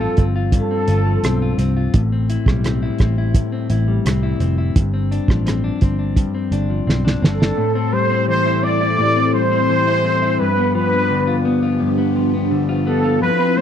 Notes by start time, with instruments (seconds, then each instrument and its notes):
Already playing: clean electric guitar G2 F3 C4, trumpet A4
0.01 clean electric guitar F4
0.17 picked electric bass G1, clean electric guitar C4, kick, closed hi-hat
0.35 clean electric guitar F4
0.52 clean electric guitar G2, trumpet A4, kick, closed hi-hat
0.71 clean electric guitar C4
0.88 picked electric bass G1, clean electric guitar F4, closed hi-hat
1.06 clean electric guitar F3
1.23 picked electric bass B1, clean electric guitar C4, cross-stick, closed hi-hat
1.42 clean electric guitar F4
1.58 picked electric bass C2, clean electric guitar C4, closed hi-hat
1.77 clean electric guitar F4
1.94 picked electric bass A1, clean electric guitar A2, kick, closed hi-hat
2.12 clean electric guitar C4
2.30 clean electric guitar E4, closed hi-hat
2.46 picked electric bass B1, clean electric guitar G3, kick, cross-stick
2.64 clean electric guitar C4, cross-stick, closed hi-hat
2.82 clean electric guitar E4
2.99 picked electric bass A1, clean electric guitar C4, kick, cross-stick, closed hi-hat
3.18 clean electric guitar E4
3.34 clean electric guitar A2, kick, closed hi-hat
3.52 clean electric guitar C4
3.70 picked electric bass A1, clean electric guitar E4, closed hi-hat
3.88 clean electric guitar G3
4.05 picked electric bass C2, clean electric guitar C4, cross-stick, closed hi-hat
4.23 clean electric guitar E4
4.40 picked electric bass F1, clean electric guitar C4, closed hi-hat
4.58 clean electric guitar E4
4.76 picked electric bass G1, clean electric guitar G2, kick, closed hi-hat
4.94 clean electric guitar C4
5.11 clean electric guitar D4, closed hi-hat
5.28 picked electric bass A1, clean electric guitar F3, kick, cross-stick
5.46 clean electric guitar C4, cross-stick, closed hi-hat
5.64 clean electric guitar D4
5.81 picked electric bass G1, clean electric guitar C4, kick, closed hi-hat
5.99 clean electric guitar D4
6.16 clean electric guitar G2, kick, closed hi-hat
6.35 clean electric guitar C4
6.52 picked electric bass G1, clean electric guitar D4, closed hi-hat
6.70 clean electric guitar F3
6.87 picked electric bass B1, clean electric guitar C4, snare
7.05 clean electric guitar D4, snare
7.22 picked electric bass G1, clean electric guitar C4, trumpet A4, snare
7.40 clean electric guitar D4, snare
7.57 clean electric guitar A2, analog synth pad G3 C4 E4 A4
7.75 clean electric guitar C4
7.93 clean electric guitar G3, trumpet C5
8.10 clean electric guitar C4
8.28 clean electric guitar E3, trumpet C5
8.46 clean electric guitar E4
8.63 clean electric guitar C4, trumpet D5
8.81 clean electric guitar E4
8.98 clean electric guitar A2
9.16 clean electric guitar C4
9.34 clean electric guitar G3, trumpet C5
9.52 clean electric guitar C4
9.69 clean electric guitar E3
9.87 clean electric guitar E4
10.05 clean electric guitar C4
10.22 clean electric guitar E4
10.39 clean electric guitar G2, analog synth pad F3 B3 D4 G4, trumpet B4
10.57 clean electric guitar B3
10.75 clean electric guitar F3, trumpet B4
10.93 clean electric guitar B3
11.10 clean electric guitar D3
11.27 clean electric guitar F4
11.45 clean electric guitar B3
11.63 clean electric guitar F4
11.80 clean electric guitar G2
11.98 clean electric guitar B3
12.16 clean electric guitar F3
12.34 clean electric guitar B3
12.51 clean electric guitar D3
12.69 clean electric guitar F4
12.87 clean electric guitar B3, trumpet A4
13.04 clean electric guitar F4
13.21 clean electric guitar F3, analog synth pad F3 C4 E4 A4, trumpet B4
13.39 clean electric guitar C4
13.57 clean electric guitar A3, trumpet C5